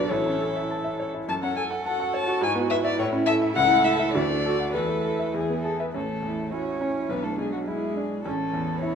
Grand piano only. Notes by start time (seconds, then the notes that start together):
Already playing: B1 B3 F#4 B4
0.11 A1
0.26 C#4
0.41 A4
0.56 E5
0.71 A5
0.84 E5
1.00 C#5
1.14 E4
1.28 F#2
1.43 C#4
1.56 A4
1.70 F#5
1.86 A5
2.00 F#5
2.14 C#5
2.27 F#4
2.41 G#2
2.55 B3
2.71 B4
2.85 E5
2.99 A2
3.12 C#4
3.28 A4
3.42 E5
3.56 C#2
3.71 A3
3.85 A4
3.99 E5
4.15 D2
4.29 A3
4.45 A4
4.59 F#5
4.74 E2
4.89 A3
5.04 A4
5.19 E5
5.34 E2
5.49 B3
5.65 G#4
5.80 E5
5.95 A1
6.23 E2
6.52 E4
6.81 C#4
7.09 B1
7.38 B2
7.67 E4
7.96 D4
8.26 A1
8.53 E2
8.82 E4